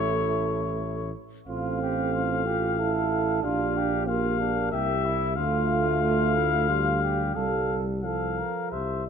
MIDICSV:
0, 0, Header, 1, 6, 480
1, 0, Start_track
1, 0, Key_signature, -1, "major"
1, 0, Tempo, 669643
1, 1057, Time_signature, 3, 2, 24, 8
1, 1529, Tempo, 648649
1, 4409, Tempo, 675676
1, 6589, End_track
2, 0, Start_track
2, 0, Title_t, "Trumpet"
2, 0, Program_c, 0, 56
2, 0, Note_on_c, 0, 73, 58
2, 796, Note_off_c, 0, 73, 0
2, 1054, Note_on_c, 0, 77, 51
2, 2458, Note_off_c, 0, 77, 0
2, 2491, Note_on_c, 0, 77, 43
2, 2957, Note_off_c, 0, 77, 0
2, 2961, Note_on_c, 0, 77, 49
2, 3433, Note_off_c, 0, 77, 0
2, 3446, Note_on_c, 0, 76, 58
2, 3918, Note_on_c, 0, 77, 59
2, 3929, Note_off_c, 0, 76, 0
2, 5345, Note_off_c, 0, 77, 0
2, 5349, Note_on_c, 0, 77, 38
2, 5660, Note_off_c, 0, 77, 0
2, 5838, Note_on_c, 0, 77, 37
2, 6296, Note_off_c, 0, 77, 0
2, 6325, Note_on_c, 0, 76, 33
2, 6570, Note_off_c, 0, 76, 0
2, 6589, End_track
3, 0, Start_track
3, 0, Title_t, "French horn"
3, 0, Program_c, 1, 60
3, 0, Note_on_c, 1, 69, 51
3, 825, Note_off_c, 1, 69, 0
3, 1064, Note_on_c, 1, 69, 48
3, 2463, Note_off_c, 1, 69, 0
3, 2495, Note_on_c, 1, 67, 41
3, 2959, Note_off_c, 1, 67, 0
3, 2971, Note_on_c, 1, 67, 47
3, 3438, Note_off_c, 1, 67, 0
3, 3449, Note_on_c, 1, 67, 47
3, 3915, Note_off_c, 1, 67, 0
3, 3929, Note_on_c, 1, 65, 55
3, 4880, Note_on_c, 1, 67, 44
3, 4891, Note_off_c, 1, 65, 0
3, 5355, Note_off_c, 1, 67, 0
3, 5362, Note_on_c, 1, 69, 41
3, 5667, Note_off_c, 1, 69, 0
3, 5847, Note_on_c, 1, 69, 37
3, 6328, Note_on_c, 1, 67, 31
3, 6339, Note_off_c, 1, 69, 0
3, 6577, Note_off_c, 1, 67, 0
3, 6589, End_track
4, 0, Start_track
4, 0, Title_t, "Trumpet"
4, 0, Program_c, 2, 56
4, 0, Note_on_c, 2, 64, 49
4, 794, Note_off_c, 2, 64, 0
4, 1065, Note_on_c, 2, 65, 48
4, 1282, Note_off_c, 2, 65, 0
4, 1300, Note_on_c, 2, 67, 48
4, 1528, Note_off_c, 2, 67, 0
4, 1533, Note_on_c, 2, 65, 43
4, 1773, Note_on_c, 2, 67, 42
4, 1784, Note_off_c, 2, 65, 0
4, 2009, Note_off_c, 2, 67, 0
4, 2013, Note_on_c, 2, 69, 56
4, 2498, Note_on_c, 2, 65, 50
4, 2509, Note_off_c, 2, 69, 0
4, 2739, Note_on_c, 2, 67, 47
4, 2750, Note_off_c, 2, 65, 0
4, 2965, Note_off_c, 2, 67, 0
4, 2970, Note_on_c, 2, 65, 48
4, 3201, Note_off_c, 2, 65, 0
4, 3206, Note_on_c, 2, 62, 40
4, 3440, Note_off_c, 2, 62, 0
4, 3447, Note_on_c, 2, 67, 51
4, 3687, Note_on_c, 2, 64, 50
4, 3698, Note_off_c, 2, 67, 0
4, 3916, Note_off_c, 2, 64, 0
4, 3920, Note_on_c, 2, 65, 59
4, 4397, Note_off_c, 2, 65, 0
4, 4401, Note_on_c, 2, 65, 53
4, 4635, Note_off_c, 2, 65, 0
4, 4639, Note_on_c, 2, 64, 49
4, 4879, Note_on_c, 2, 65, 53
4, 4889, Note_off_c, 2, 64, 0
4, 5115, Note_off_c, 2, 65, 0
4, 5118, Note_on_c, 2, 67, 47
4, 5352, Note_on_c, 2, 69, 41
4, 5363, Note_off_c, 2, 67, 0
4, 5719, Note_off_c, 2, 69, 0
4, 5840, Note_on_c, 2, 69, 37
4, 6083, Note_on_c, 2, 70, 35
4, 6094, Note_off_c, 2, 69, 0
4, 6322, Note_on_c, 2, 72, 39
4, 6333, Note_off_c, 2, 70, 0
4, 6565, Note_off_c, 2, 72, 0
4, 6589, End_track
5, 0, Start_track
5, 0, Title_t, "Trombone"
5, 0, Program_c, 3, 57
5, 0, Note_on_c, 3, 57, 69
5, 819, Note_off_c, 3, 57, 0
5, 1064, Note_on_c, 3, 60, 66
5, 1744, Note_off_c, 3, 60, 0
5, 1769, Note_on_c, 3, 65, 63
5, 2015, Note_on_c, 3, 64, 73
5, 2026, Note_off_c, 3, 65, 0
5, 2485, Note_off_c, 3, 64, 0
5, 2490, Note_on_c, 3, 62, 70
5, 2966, Note_on_c, 3, 58, 59
5, 2977, Note_off_c, 3, 62, 0
5, 3684, Note_off_c, 3, 58, 0
5, 3925, Note_on_c, 3, 57, 83
5, 4852, Note_off_c, 3, 57, 0
5, 4881, Note_on_c, 3, 55, 65
5, 5346, Note_off_c, 3, 55, 0
5, 5355, Note_on_c, 3, 55, 62
5, 5849, Note_on_c, 3, 53, 45
5, 5859, Note_off_c, 3, 55, 0
5, 6330, Note_off_c, 3, 53, 0
5, 6589, End_track
6, 0, Start_track
6, 0, Title_t, "Bass trombone"
6, 0, Program_c, 4, 57
6, 0, Note_on_c, 4, 33, 51
6, 801, Note_off_c, 4, 33, 0
6, 1061, Note_on_c, 4, 33, 46
6, 2461, Note_off_c, 4, 33, 0
6, 2495, Note_on_c, 4, 34, 48
6, 3429, Note_off_c, 4, 34, 0
6, 3451, Note_on_c, 4, 36, 50
6, 3923, Note_on_c, 4, 38, 55
6, 3934, Note_off_c, 4, 36, 0
6, 5352, Note_off_c, 4, 38, 0
6, 5356, Note_on_c, 4, 36, 40
6, 6106, Note_off_c, 4, 36, 0
6, 6326, Note_on_c, 4, 36, 37
6, 6558, Note_off_c, 4, 36, 0
6, 6589, End_track
0, 0, End_of_file